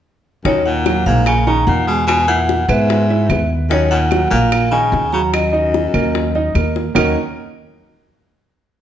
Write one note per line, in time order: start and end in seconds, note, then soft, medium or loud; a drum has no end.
0.45 1.02 D#2 medium
0.45 0.64 F#2 medium
0.45 0.79 D#3 medium
0.45 0.79 D#4 medium
0.45 0.65 C#5 loud
0.45 high bongo medium
0.65 1.04 A#2 medium
0.65 1.08 F#5 medium
0.65 high bongo soft
0.86 1.03 F#3 medium
0.86 1.03 F#4 medium
0.86 high bongo medium
0.86 claves medium
1.06 1.63 A#1 medium
1.06 1.25 G#2 medium
1.06 1.40 A#3 medium
1.06 1.40 A#4 medium
1.06 1.27 F5 loud
1.06 high bongo soft
1.26 1.46 C#3 medium
1.26 1.48 G#5 medium
1.26 high bongo medium
1.26 claves medium
1.47 1.66 C#3 medium
1.47 1.80 D#3 medium
1.47 1.81 D#4 medium
1.47 1.68 A#5 medium
1.47 high bongo soft
1.67 2.63 E2 medium
1.67 1.86 A#2 medium
1.67 1.86 F#5 medium
1.67 high bongo soft
1.67 low bongo medium
1.87 2.06 B2 medium
1.87 2.21 G#3 medium
1.87 2.21 G#4 medium
1.87 2.07 G#5 medium
2.07 2.26 B2 medium
2.07 2.29 G#5 loud
2.07 high bongo medium
2.07 claves medium
2.27 2.66 A#2 medium
2.27 2.62 E4 medium
2.27 2.62 E5 medium
2.27 2.70 F#5 loud
2.27 high bongo soft
2.49 high bongo medium
2.68 3.46 G#2 medium
2.68 3.26 G#2 medium
2.68 3.02 B3 medium
2.68 3.03 B4 medium
2.68 3.47 E5 loud
2.68 high bongo soft
2.68 claves medium
2.90 high bongo medium
3.10 3.27 E4 medium
3.10 3.27 E5 medium
3.10 high bongo soft
3.29 4.25 D#2 medium
3.29 3.63 B3 medium
3.29 3.63 B4 medium
3.29 high bongo soft
3.29 low bongo medium
3.29 claves medium
3.69 3.89 F#2 medium
3.69 4.04 D#3 medium
3.69 4.04 D#4 medium
3.69 3.92 C#5 medium
3.69 high bongo medium
3.91 4.29 A#2 medium
3.91 4.29 F#5 loud
3.91 high bongo soft
4.11 4.28 F#3 medium
4.11 4.28 F#4 medium
4.11 high bongo medium
4.11 claves medium
4.30 4.88 A#1 medium
4.30 4.69 A#2 medium
4.30 4.65 A#3 medium
4.30 4.65 A#4 medium
4.30 4.74 F5 medium
4.30 high bongo soft
4.52 high bongo medium
4.52 claves medium
4.71 5.09 C#3 medium
4.71 5.05 D#3 medium
4.71 5.06 D#4 medium
4.71 5.10 G#5 medium
4.71 high bongo soft
4.92 5.88 D#2 medium
4.92 high bongo soft
4.92 low bongo medium
5.13 5.22 C#3 medium
5.13 5.46 F#3 medium
5.13 5.46 F#4 medium
5.13 5.22 A#5 medium
5.33 6.71 F#2 medium
5.33 6.71 D#5 medium
5.33 high bongo medium
5.33 claves medium
5.53 5.86 D#4 medium
5.53 5.87 D#5 medium
5.53 high bongo soft
5.74 high bongo medium
5.94 6.51 D#2 medium
5.94 6.27 A#3 medium
5.94 6.27 A#4 medium
5.94 high bongo soft
5.94 claves medium
6.15 high bongo medium
6.35 6.52 D#4 medium
6.35 6.52 D#5 medium
6.35 high bongo soft
6.55 6.91 D#2 medium
6.55 6.89 A#3 medium
6.55 6.89 A#4 medium
6.55 high bongo soft
6.55 low bongo medium
6.55 claves medium
6.76 high bongo medium
6.95 7.14 D#2 medium
6.95 7.15 F#2 medium
6.95 7.14 D#3 medium
6.95 7.14 A#3 medium
6.95 7.14 C#4 medium
6.95 7.14 D#4 medium
6.95 7.14 F#4 medium
6.95 7.15 A#4 loud
6.95 7.15 D#5 medium
6.95 low bongo medium
6.95 claves loud